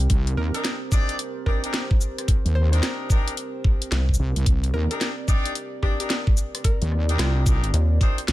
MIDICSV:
0, 0, Header, 1, 7, 480
1, 0, Start_track
1, 0, Key_signature, -3, "minor"
1, 0, Tempo, 545455
1, 86, Time_signature, 4, 2, 24, 8
1, 7324, End_track
2, 0, Start_track
2, 0, Title_t, "Analog synth pad"
2, 0, Program_c, 0, 89
2, 0, Note_on_c, 0, 60, 79
2, 0, Note_on_c, 0, 67, 80
2, 0, Note_on_c, 0, 70, 76
2, 86, Note_on_c, 0, 72, 87
2, 3921, Note_off_c, 0, 72, 0
2, 3932, Note_on_c, 0, 74, 98
2, 7324, Note_off_c, 0, 60, 0
2, 7324, Note_off_c, 0, 67, 0
2, 7324, Note_off_c, 0, 70, 0
2, 7324, Note_off_c, 0, 74, 0
2, 7324, End_track
3, 0, Start_track
3, 0, Title_t, "Synth pluck"
3, 0, Program_c, 1, 84
3, 329, Note_on_c, 1, 70, 94
3, 449, Note_off_c, 1, 70, 0
3, 480, Note_on_c, 1, 70, 91
3, 585, Note_off_c, 1, 70, 0
3, 1287, Note_on_c, 1, 70, 91
3, 1448, Note_off_c, 1, 70, 0
3, 2245, Note_on_c, 1, 72, 93
3, 2343, Note_off_c, 1, 72, 0
3, 2398, Note_on_c, 1, 72, 74
3, 2454, Note_off_c, 1, 72, 0
3, 4169, Note_on_c, 1, 70, 101
3, 4289, Note_off_c, 1, 70, 0
3, 4320, Note_on_c, 1, 70, 89
3, 4425, Note_off_c, 1, 70, 0
3, 5128, Note_on_c, 1, 67, 92
3, 5224, Note_off_c, 1, 67, 0
3, 5281, Note_on_c, 1, 67, 80
3, 5336, Note_off_c, 1, 67, 0
3, 5849, Note_on_c, 1, 70, 93
3, 6009, Note_off_c, 1, 70, 0
3, 6331, Note_on_c, 1, 65, 90
3, 6809, Note_off_c, 1, 65, 0
3, 7324, End_track
4, 0, Start_track
4, 0, Title_t, "Horn section"
4, 0, Program_c, 2, 61
4, 477, Note_on_c, 2, 62, 75
4, 478, Note_on_c, 2, 63, 66
4, 478, Note_on_c, 2, 67, 70
4, 478, Note_on_c, 2, 70, 78
4, 660, Note_off_c, 2, 62, 0
4, 660, Note_off_c, 2, 63, 0
4, 660, Note_off_c, 2, 67, 0
4, 660, Note_off_c, 2, 70, 0
4, 807, Note_on_c, 2, 62, 102
4, 807, Note_on_c, 2, 63, 100
4, 807, Note_on_c, 2, 67, 96
4, 807, Note_on_c, 2, 74, 120
4, 1013, Note_off_c, 2, 62, 0
4, 1013, Note_off_c, 2, 63, 0
4, 1013, Note_off_c, 2, 67, 0
4, 1013, Note_off_c, 2, 74, 0
4, 1287, Note_on_c, 2, 62, 82
4, 1287, Note_on_c, 2, 67, 75
4, 1288, Note_on_c, 2, 63, 76
4, 1288, Note_on_c, 2, 74, 99
4, 1402, Note_off_c, 2, 62, 0
4, 1402, Note_off_c, 2, 63, 0
4, 1402, Note_off_c, 2, 67, 0
4, 1402, Note_off_c, 2, 74, 0
4, 1439, Note_on_c, 2, 62, 84
4, 1439, Note_on_c, 2, 63, 75
4, 1439, Note_on_c, 2, 67, 80
4, 1439, Note_on_c, 2, 70, 95
4, 1621, Note_off_c, 2, 62, 0
4, 1621, Note_off_c, 2, 63, 0
4, 1621, Note_off_c, 2, 67, 0
4, 1621, Note_off_c, 2, 70, 0
4, 2398, Note_on_c, 2, 62, 76
4, 2398, Note_on_c, 2, 63, 69
4, 2398, Note_on_c, 2, 67, 68
4, 2398, Note_on_c, 2, 70, 79
4, 2705, Note_off_c, 2, 62, 0
4, 2705, Note_off_c, 2, 63, 0
4, 2705, Note_off_c, 2, 70, 0
4, 2706, Note_off_c, 2, 67, 0
4, 2726, Note_on_c, 2, 63, 79
4, 2726, Note_on_c, 2, 70, 99
4, 2727, Note_on_c, 2, 62, 90
4, 2727, Note_on_c, 2, 67, 78
4, 2933, Note_off_c, 2, 62, 0
4, 2933, Note_off_c, 2, 63, 0
4, 2933, Note_off_c, 2, 67, 0
4, 2933, Note_off_c, 2, 70, 0
4, 4317, Note_on_c, 2, 63, 68
4, 4317, Note_on_c, 2, 67, 72
4, 4317, Note_on_c, 2, 70, 90
4, 4318, Note_on_c, 2, 62, 77
4, 4500, Note_off_c, 2, 62, 0
4, 4500, Note_off_c, 2, 63, 0
4, 4500, Note_off_c, 2, 67, 0
4, 4500, Note_off_c, 2, 70, 0
4, 4646, Note_on_c, 2, 62, 113
4, 4646, Note_on_c, 2, 63, 101
4, 4646, Note_on_c, 2, 67, 100
4, 4646, Note_on_c, 2, 74, 118
4, 4852, Note_off_c, 2, 62, 0
4, 4852, Note_off_c, 2, 67, 0
4, 4852, Note_off_c, 2, 74, 0
4, 4853, Note_off_c, 2, 63, 0
4, 5125, Note_on_c, 2, 67, 78
4, 5125, Note_on_c, 2, 74, 94
4, 5126, Note_on_c, 2, 62, 90
4, 5126, Note_on_c, 2, 63, 78
4, 5241, Note_off_c, 2, 62, 0
4, 5241, Note_off_c, 2, 63, 0
4, 5241, Note_off_c, 2, 67, 0
4, 5241, Note_off_c, 2, 74, 0
4, 5277, Note_on_c, 2, 62, 86
4, 5277, Note_on_c, 2, 63, 76
4, 5277, Note_on_c, 2, 67, 76
4, 5277, Note_on_c, 2, 70, 92
4, 5460, Note_off_c, 2, 62, 0
4, 5460, Note_off_c, 2, 63, 0
4, 5460, Note_off_c, 2, 67, 0
4, 5460, Note_off_c, 2, 70, 0
4, 6236, Note_on_c, 2, 62, 79
4, 6236, Note_on_c, 2, 67, 69
4, 6237, Note_on_c, 2, 63, 69
4, 6237, Note_on_c, 2, 70, 84
4, 6545, Note_off_c, 2, 62, 0
4, 6545, Note_off_c, 2, 63, 0
4, 6545, Note_off_c, 2, 67, 0
4, 6545, Note_off_c, 2, 70, 0
4, 6566, Note_on_c, 2, 62, 89
4, 6566, Note_on_c, 2, 63, 79
4, 6566, Note_on_c, 2, 67, 83
4, 6566, Note_on_c, 2, 70, 96
4, 6772, Note_off_c, 2, 63, 0
4, 6772, Note_off_c, 2, 67, 0
4, 6772, Note_off_c, 2, 70, 0
4, 6773, Note_off_c, 2, 62, 0
4, 7046, Note_on_c, 2, 62, 91
4, 7047, Note_on_c, 2, 63, 84
4, 7047, Note_on_c, 2, 67, 82
4, 7047, Note_on_c, 2, 72, 100
4, 7199, Note_off_c, 2, 62, 0
4, 7199, Note_off_c, 2, 63, 0
4, 7199, Note_off_c, 2, 67, 0
4, 7199, Note_off_c, 2, 72, 0
4, 7324, End_track
5, 0, Start_track
5, 0, Title_t, "Analog synth bass"
5, 0, Program_c, 3, 38
5, 3447, Note_on_c, 3, 36, 95
5, 3673, Note_off_c, 3, 36, 0
5, 6807, Note_on_c, 3, 39, 101
5, 7033, Note_off_c, 3, 39, 0
5, 7324, End_track
6, 0, Start_track
6, 0, Title_t, "Wobble bass"
6, 0, Program_c, 4, 39
6, 87, Note_on_c, 4, 36, 96
6, 313, Note_off_c, 4, 36, 0
6, 327, Note_on_c, 4, 39, 99
6, 454, Note_off_c, 4, 39, 0
6, 2159, Note_on_c, 4, 39, 95
6, 2473, Note_off_c, 4, 39, 0
6, 3688, Note_on_c, 4, 36, 101
6, 3815, Note_off_c, 4, 36, 0
6, 3838, Note_on_c, 4, 36, 102
6, 3913, Note_off_c, 4, 36, 0
6, 3928, Note_on_c, 4, 36, 99
6, 4153, Note_off_c, 4, 36, 0
6, 4168, Note_on_c, 4, 39, 101
6, 4295, Note_off_c, 4, 39, 0
6, 5998, Note_on_c, 4, 39, 95
6, 6313, Note_off_c, 4, 39, 0
6, 6327, Note_on_c, 4, 36, 99
6, 6793, Note_off_c, 4, 36, 0
6, 7288, Note_on_c, 4, 36, 103
6, 7324, Note_off_c, 4, 36, 0
6, 7324, End_track
7, 0, Start_track
7, 0, Title_t, "Drums"
7, 86, Note_on_c, 9, 42, 62
7, 87, Note_on_c, 9, 36, 110
7, 174, Note_off_c, 9, 42, 0
7, 175, Note_off_c, 9, 36, 0
7, 239, Note_on_c, 9, 42, 37
7, 327, Note_off_c, 9, 42, 0
7, 479, Note_on_c, 9, 42, 51
7, 567, Note_off_c, 9, 42, 0
7, 568, Note_on_c, 9, 38, 119
7, 568, Note_on_c, 9, 42, 66
7, 656, Note_off_c, 9, 38, 0
7, 656, Note_off_c, 9, 42, 0
7, 808, Note_on_c, 9, 36, 116
7, 808, Note_on_c, 9, 82, 66
7, 896, Note_off_c, 9, 36, 0
7, 896, Note_off_c, 9, 82, 0
7, 960, Note_on_c, 9, 42, 50
7, 1048, Note_off_c, 9, 42, 0
7, 1048, Note_on_c, 9, 42, 63
7, 1136, Note_off_c, 9, 42, 0
7, 1287, Note_on_c, 9, 36, 61
7, 1289, Note_on_c, 9, 37, 39
7, 1375, Note_off_c, 9, 36, 0
7, 1377, Note_off_c, 9, 37, 0
7, 1441, Note_on_c, 9, 42, 53
7, 1528, Note_off_c, 9, 42, 0
7, 1528, Note_on_c, 9, 38, 119
7, 1528, Note_on_c, 9, 42, 67
7, 1616, Note_off_c, 9, 38, 0
7, 1616, Note_off_c, 9, 42, 0
7, 1679, Note_on_c, 9, 36, 108
7, 1767, Note_off_c, 9, 36, 0
7, 1770, Note_on_c, 9, 82, 65
7, 1858, Note_off_c, 9, 82, 0
7, 1922, Note_on_c, 9, 37, 50
7, 1922, Note_on_c, 9, 42, 52
7, 2007, Note_on_c, 9, 36, 117
7, 2010, Note_off_c, 9, 37, 0
7, 2010, Note_off_c, 9, 42, 0
7, 2010, Note_on_c, 9, 42, 68
7, 2095, Note_off_c, 9, 36, 0
7, 2098, Note_off_c, 9, 42, 0
7, 2163, Note_on_c, 9, 42, 37
7, 2251, Note_off_c, 9, 42, 0
7, 2402, Note_on_c, 9, 42, 50
7, 2490, Note_off_c, 9, 42, 0
7, 2490, Note_on_c, 9, 38, 118
7, 2490, Note_on_c, 9, 42, 65
7, 2578, Note_off_c, 9, 38, 0
7, 2578, Note_off_c, 9, 42, 0
7, 2727, Note_on_c, 9, 36, 104
7, 2729, Note_on_c, 9, 82, 70
7, 2815, Note_off_c, 9, 36, 0
7, 2817, Note_off_c, 9, 82, 0
7, 2882, Note_on_c, 9, 42, 53
7, 2968, Note_off_c, 9, 42, 0
7, 2968, Note_on_c, 9, 42, 64
7, 3056, Note_off_c, 9, 42, 0
7, 3207, Note_on_c, 9, 36, 105
7, 3295, Note_off_c, 9, 36, 0
7, 3359, Note_on_c, 9, 42, 51
7, 3447, Note_off_c, 9, 42, 0
7, 3448, Note_on_c, 9, 38, 119
7, 3448, Note_on_c, 9, 42, 64
7, 3536, Note_off_c, 9, 38, 0
7, 3536, Note_off_c, 9, 42, 0
7, 3598, Note_on_c, 9, 36, 62
7, 3644, Note_on_c, 9, 82, 70
7, 3686, Note_off_c, 9, 36, 0
7, 3732, Note_off_c, 9, 82, 0
7, 3839, Note_on_c, 9, 42, 54
7, 3926, Note_on_c, 9, 36, 112
7, 3927, Note_off_c, 9, 42, 0
7, 3928, Note_on_c, 9, 42, 66
7, 4014, Note_off_c, 9, 36, 0
7, 4016, Note_off_c, 9, 42, 0
7, 4080, Note_on_c, 9, 42, 36
7, 4168, Note_off_c, 9, 42, 0
7, 4320, Note_on_c, 9, 42, 52
7, 4408, Note_off_c, 9, 42, 0
7, 4409, Note_on_c, 9, 38, 115
7, 4409, Note_on_c, 9, 42, 63
7, 4497, Note_off_c, 9, 38, 0
7, 4497, Note_off_c, 9, 42, 0
7, 4647, Note_on_c, 9, 36, 103
7, 4649, Note_on_c, 9, 82, 69
7, 4735, Note_off_c, 9, 36, 0
7, 4737, Note_off_c, 9, 82, 0
7, 4800, Note_on_c, 9, 42, 53
7, 4888, Note_off_c, 9, 42, 0
7, 4888, Note_on_c, 9, 42, 64
7, 4976, Note_off_c, 9, 42, 0
7, 5127, Note_on_c, 9, 36, 58
7, 5129, Note_on_c, 9, 37, 44
7, 5215, Note_off_c, 9, 36, 0
7, 5217, Note_off_c, 9, 37, 0
7, 5280, Note_on_c, 9, 42, 53
7, 5368, Note_off_c, 9, 42, 0
7, 5368, Note_on_c, 9, 38, 116
7, 5368, Note_on_c, 9, 42, 68
7, 5456, Note_off_c, 9, 38, 0
7, 5456, Note_off_c, 9, 42, 0
7, 5518, Note_on_c, 9, 36, 110
7, 5606, Note_off_c, 9, 36, 0
7, 5609, Note_on_c, 9, 82, 65
7, 5697, Note_off_c, 9, 82, 0
7, 5761, Note_on_c, 9, 37, 53
7, 5761, Note_on_c, 9, 42, 53
7, 5846, Note_on_c, 9, 36, 115
7, 5848, Note_off_c, 9, 42, 0
7, 5848, Note_on_c, 9, 42, 69
7, 5849, Note_off_c, 9, 37, 0
7, 5934, Note_off_c, 9, 36, 0
7, 5936, Note_off_c, 9, 42, 0
7, 5998, Note_on_c, 9, 42, 38
7, 6086, Note_off_c, 9, 42, 0
7, 6089, Note_on_c, 9, 37, 40
7, 6177, Note_off_c, 9, 37, 0
7, 6240, Note_on_c, 9, 42, 53
7, 6328, Note_off_c, 9, 42, 0
7, 6330, Note_on_c, 9, 38, 119
7, 6330, Note_on_c, 9, 42, 68
7, 6418, Note_off_c, 9, 38, 0
7, 6418, Note_off_c, 9, 42, 0
7, 6567, Note_on_c, 9, 36, 109
7, 6569, Note_on_c, 9, 42, 38
7, 6569, Note_on_c, 9, 82, 65
7, 6655, Note_off_c, 9, 36, 0
7, 6657, Note_off_c, 9, 42, 0
7, 6657, Note_off_c, 9, 82, 0
7, 6720, Note_on_c, 9, 42, 54
7, 6808, Note_off_c, 9, 42, 0
7, 6810, Note_on_c, 9, 42, 70
7, 6898, Note_off_c, 9, 42, 0
7, 7047, Note_on_c, 9, 36, 106
7, 7049, Note_on_c, 9, 42, 37
7, 7135, Note_off_c, 9, 36, 0
7, 7137, Note_off_c, 9, 42, 0
7, 7200, Note_on_c, 9, 42, 57
7, 7288, Note_off_c, 9, 42, 0
7, 7288, Note_on_c, 9, 38, 118
7, 7288, Note_on_c, 9, 42, 72
7, 7324, Note_off_c, 9, 38, 0
7, 7324, Note_off_c, 9, 42, 0
7, 7324, End_track
0, 0, End_of_file